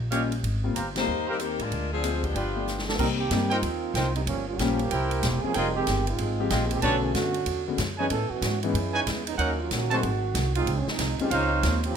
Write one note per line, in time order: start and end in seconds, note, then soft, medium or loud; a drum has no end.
0.00 0.40 A#1 medium
0.11 0.29 G3 medium
0.11 0.29 A#3 medium
0.11 0.30 C#4 medium
0.11 0.30 F4 medium
0.11 0.25 G4 medium
0.11 0.25 C#5 medium
0.11 0.25 D#5 medium
0.11 0.25 F5 medium
0.11 hi-hat pedal medium
0.11 ride medium
0.32 ride soft
0.43 0.73 G#1 medium
0.43 ride medium
0.64 0.74 G3 medium
0.64 0.74 A#3 soft
0.64 0.74 C4 medium
0.64 0.75 F4 medium
0.75 1.05 G1 medium
0.75 0.89 G4 medium
0.75 0.89 C5 medium
0.75 0.89 F5 medium
0.75 0.89 A#5 medium
0.75 hi-hat pedal soft
0.75 ride medium
0.95 1.06 G3 medium
0.95 1.06 A#3 medium
0.95 1.26 A#3 medium
0.95 1.06 C4 soft
0.95 1.26 D#4 medium
0.95 1.06 F4 medium
0.95 1.26 G4 medium
0.95 1.26 C5 loud
0.95 snare medium
0.95 ride medium
1.08 1.56 D#2 medium
1.27 1.41 G3 medium
1.27 1.40 C4 medium
1.27 1.41 D#4 medium
1.27 1.35 G4 medium
1.27 1.41 A#4 medium
1.27 1.35 C5 medium
1.27 1.35 F5 medium
1.27 1.35 A#5 medium
1.40 1.60 D#3 medium
1.40 1.60 A#3 medium
1.40 1.60 C4 medium
1.40 1.60 G4 medium
1.40 hi-hat pedal soft
1.40 ride medium
1.59 1.70 A2 medium
1.59 1.92 G#3 medium
1.59 1.91 D4 medium
1.59 1.92 F4 medium
1.59 1.92 A#4 medium
1.59 ride soft
1.70 2.31 D2 medium
1.70 ride soft
1.92 2.21 F3 medium
1.92 2.22 C4 medium
1.92 2.21 D4 medium
1.92 2.21 G#4 medium
2.03 2.21 G#3 medium
2.03 2.21 C4 medium
2.03 2.22 D4 medium
2.03 2.22 F4 medium
2.03 hi-hat pedal soft
2.03 ride medium
2.23 2.88 F3 medium
2.23 2.87 B3 medium
2.23 2.87 D4 medium
2.23 2.87 G4 medium
2.23 kick soft
2.23 ride soft
2.34 2.95 G1 medium
2.34 2.83 F4 medium
2.34 2.83 B4 medium
2.34 2.83 D5 medium
2.34 2.83 G5 medium
2.34 ride medium
2.56 2.66 A3 soft
2.56 2.66 B3 soft
2.56 2.66 D4 soft
2.56 2.66 F4 medium
2.67 snare soft
2.67 hi-hat pedal medium
2.78 snare medium
2.88 2.98 F3 medium
2.88 2.98 B3 medium
2.88 2.98 D4 medium
2.88 2.98 A4 loud
2.88 snare medium
2.99 3.30 C2 medium
2.99 3.08 G3 medium
2.99 3.17 G3 medium
2.99 3.17 A#3 medium
2.99 3.08 C4 loud
2.99 3.17 C4 medium
2.99 3.08 D#4 medium
2.99 3.17 D#4 medium
2.99 3.18 G4 medium
2.99 3.08 A#4 loud
2.99 kick medium
2.99 crash medium
3.19 3.49 D#3 medium
3.19 3.49 A#3 medium
3.19 3.49 C4 medium
3.19 3.49 G4 loud
3.30 3.62 G2 medium
3.30 3.49 G3 medium
3.30 3.49 A#3 medium
3.30 3.49 C4 medium
3.30 3.49 D#4 medium
3.30 3.49 G4 medium
3.30 snare medium
3.30 hi-hat pedal soft
3.30 ride medium
3.51 4.14 A#3 medium
3.51 4.14 C4 medium
3.51 3.59 D#4 medium
3.51 4.14 D#4 medium
3.51 4.16 F4 medium
3.51 3.59 A#4 medium
3.51 3.59 C5 medium
3.51 3.59 G5 loud
3.51 ride soft
3.62 3.94 D#2 medium
3.62 ride medium
3.94 4.25 C2 loud
3.94 4.08 D#4 medium
3.94 4.08 A#4 medium
3.94 4.08 C5 medium
3.94 4.08 G5 medium
3.94 snare medium
3.94 hi-hat pedal soft
3.94 ride medium
4.15 4.21 G3 medium
4.15 4.21 A#3 medium
4.15 4.21 C4 medium
4.15 4.21 D#4 medium
4.15 ride soft
4.26 4.57 G1 medium
4.26 4.46 F3 medium
4.26 4.46 G3 medium
4.26 4.46 A#3 medium
4.26 4.46 C#4 loud
4.26 ride medium
4.48 4.59 G3 medium
4.48 4.58 A#3 medium
4.48 4.58 C#4 medium
4.48 4.59 F4 medium
4.58 4.89 A#1 medium
4.58 4.91 F3 medium
4.58 4.77 G3 medium
4.58 5.42 A#3 loud
4.58 4.78 A#3 medium
4.58 4.91 C#4 medium
4.58 4.78 C#4 medium
4.58 4.78 F4 medium
4.58 5.43 G4 loud
4.58 4.78 G4 medium
4.58 snare medium
4.58 hi-hat pedal medium
4.58 ride medium
4.79 ride soft
4.91 5.22 C2 medium
4.91 5.39 E4 medium
4.91 5.39 A#4 medium
4.91 5.39 C5 medium
4.91 5.39 G5 medium
4.91 ride medium
5.11 ride medium
5.23 5.41 E1 loud
5.23 snare medium
5.23 hi-hat pedal medium
5.23 ride medium
5.43 5.55 F3 medium
5.43 5.85 F3 medium
5.43 5.85 G#3 soft
5.43 5.55 A#3 medium
5.43 5.85 C4 medium
5.43 5.55 C#4 medium
5.43 5.85 D#4 soft
5.43 5.55 G#4 loud
5.43 5.85 G#4 medium
5.43 muted upright bass stroke soft
5.54 5.86 F1 medium
5.54 5.76 G3 medium
5.54 5.74 C4 medium
5.54 5.75 D#4 loud
5.54 5.68 F4 medium
5.54 5.68 G#4 medium
5.54 5.76 A#4 loud
5.54 5.68 D#5 medium
5.54 5.68 G5 loud
5.54 ride medium
5.75 6.05 D#3 medium
5.75 6.05 G#3 medium
5.75 6.05 C4 medium
5.75 6.05 G4 loud
5.87 6.18 G1 medium
5.87 snare medium
5.87 hi-hat pedal medium
5.87 ride medium
6.07 6.67 G#3 medium
6.07 6.67 C4 medium
6.07 6.67 D#4 medium
6.07 6.68 F4 medium
6.07 ride soft
6.18 6.50 G#1 medium
6.18 ride medium
6.40 6.81 F3 medium
6.40 6.81 G#3 medium
6.40 6.81 C4 medium
6.40 6.81 D#4 medium
6.40 6.81 G4 medium
6.50 6.82 A#1 loud
6.50 6.64 F4 medium
6.50 6.64 G#4 medium
6.50 6.64 D#5 medium
6.50 6.64 G5 medium
6.50 snare medium
6.50 hi-hat pedal medium
6.50 ride medium
6.71 6.83 D#3 medium
6.71 6.82 G#3 medium
6.71 6.83 C4 medium
6.71 6.82 G4 loud
6.71 ride medium
6.82 7.14 B1 medium
6.82 7.31 D3 medium
6.82 7.02 F#3 medium
6.82 7.31 A3 soft
6.82 7.31 B3 medium
6.82 7.31 C#4 medium
6.82 7.02 C#4 medium
6.82 6.96 D4 loud
6.82 7.02 D4 loud
6.82 7.31 F#4 medium
6.82 7.02 A4 loud
6.82 6.96 B4 medium
6.82 6.96 C#5 loud
6.82 6.96 A5 loud
6.82 ride medium
7.03 7.15 E3 medium
7.03 7.13 A3 medium
7.03 7.14 C#4 medium
7.03 7.15 G#4 medium
7.14 7.45 F#2 medium
7.14 7.67 D3 medium
7.14 7.44 A3 medium
7.14 7.67 C#4 medium
7.14 7.66 F#4 loud
7.14 snare medium
7.14 hi-hat pedal medium
7.14 ride medium
7.34 ride soft
7.46 7.77 E2 medium
7.46 ride medium
7.67 7.78 D3 medium
7.67 7.78 G#3 medium
7.67 7.78 B3 medium
7.67 7.78 C#4 soft
7.67 7.78 F#4 medium
7.78 8.09 F#2 loud
7.78 snare medium
7.78 hi-hat pedal medium
7.78 ride medium
7.98 8.10 E3 soft
7.98 8.10 F#3 medium
7.98 8.10 G#3 soft
7.98 8.09 B3 medium
7.98 8.10 B3 soft
7.98 8.10 C#4 soft
7.98 8.10 D4 medium
7.98 8.06 D#4 medium
7.98 8.10 D#4 medium
7.98 8.10 G#4 medium
7.98 8.07 B4 medium
7.98 8.06 C#5 medium
7.98 8.07 G#5 medium
8.10 8.29 A2 medium
8.10 8.29 E3 medium
8.10 8.29 B3 medium
8.10 8.29 C#4 medium
8.10 8.29 A4 loud
8.10 ride medium
8.30 8.63 E3 medium
8.30 8.62 B3 medium
8.30 8.62 C#4 medium
8.30 8.63 F#4 medium
8.30 muted upright bass stroke soft
8.42 8.73 G#2 medium
8.42 snare medium
8.42 hi-hat pedal medium
8.42 ride medium
8.63 8.74 E3 medium
8.63 9.23 G#3 medium
8.63 8.74 G#3 medium
8.63 9.23 B3 medium
8.63 8.74 B3 medium
8.63 9.23 C#4 medium
8.63 8.74 C#4 medium
8.63 8.74 D#4 medium
8.63 9.23 E4 medium
8.63 ride soft
8.74 9.05 F#2 medium
8.74 ride medium
8.94 9.02 D#4 medium
8.94 9.02 B4 medium
8.94 9.02 C#5 medium
8.94 9.02 G#5 loud
9.07 9.38 E2 loud
9.07 snare medium
9.07 hi-hat pedal soft
9.07 ride medium
9.27 9.38 G#3 medium
9.27 9.38 B3 medium
9.27 9.38 C#4 medium
9.27 9.38 D#4 medium
9.27 ride medium
9.38 9.70 D#2 medium
9.38 9.58 D#3 medium
9.38 9.58 F#3 medium
9.38 9.58 A#3 medium
9.38 9.58 C#4 loud
9.38 9.52 D#4 medium
9.38 9.52 A#4 medium
9.38 9.52 C#5 medium
9.38 9.52 F#5 loud
9.38 ride medium
9.60 9.71 F#3 medium
9.60 9.71 A#3 medium
9.60 9.71 C#4 medium
9.60 9.71 F4 medium
9.71 10.02 A#1 medium
9.71 10.52 D#3 medium
9.71 10.02 A#3 medium
9.71 10.01 C#4 medium
9.71 10.52 F#4 medium
9.71 snare medium
9.71 hi-hat pedal medium
9.71 ride medium
9.90 10.02 F#3 medium
9.90 10.02 A3 medium
9.90 10.02 C4 medium
9.90 10.03 D#4 medium
9.90 9.99 F#4 medium
9.90 10.03 G#4 medium
9.90 9.99 A4 medium
9.90 9.99 C5 medium
9.90 9.99 A5 loud
9.90 ride soft
10.03 10.34 G#1 medium
10.03 ride medium
10.35 10.66 C2 loud
10.35 snare medium
10.35 hi-hat pedal medium
10.35 ride medium
10.55 10.77 G#3 medium
10.55 10.77 C4 medium
10.55 10.78 D#4 medium
10.55 10.78 F4 loud
10.55 ride medium
10.66 10.86 C#2 medium
10.66 ride medium
10.79 10.88 C#4 medium
10.87 11.20 F3 medium
10.87 11.19 G#3 medium
10.87 11.19 C4 medium
10.87 11.20 D#4 medium
10.87 muted upright bass stroke soft
10.87 snare medium
10.99 11.18 C2 medium
10.99 snare medium
10.99 hi-hat pedal soft
10.99 ride medium
11.19 11.32 D#3 medium
11.19 11.31 G#3 medium
11.19 11.31 C4 medium
11.19 11.32 C4 medium
11.19 11.31 C#4 medium
11.19 11.31 D#4 medium
11.19 11.31 F4 medium
11.19 11.32 G4 medium
11.19 muted upright bass stroke soft
11.19 ride soft
11.31 11.62 C#2 medium
11.31 11.51 G#3 medium
11.31 11.51 C4 medium
11.31 11.80 D#4 medium
11.31 11.51 D#4 medium
11.31 11.51 F4 medium
11.31 11.80 C5 medium
11.31 11.80 C#5 medium
11.31 11.80 F5 loud
11.31 ride medium
11.54 11.84 F3 medium
11.54 11.85 G#3 medium
11.54 11.84 C4 medium
11.54 11.85 D#4 medium
11.63 11.94 D#2 loud
11.63 snare medium
11.63 hi-hat pedal medium
11.63 ride medium
11.83 11.96 F3 medium
11.83 11.96 C4 medium
11.83 11.96 C#4 medium
11.83 11.96 G4 medium
11.83 ride soft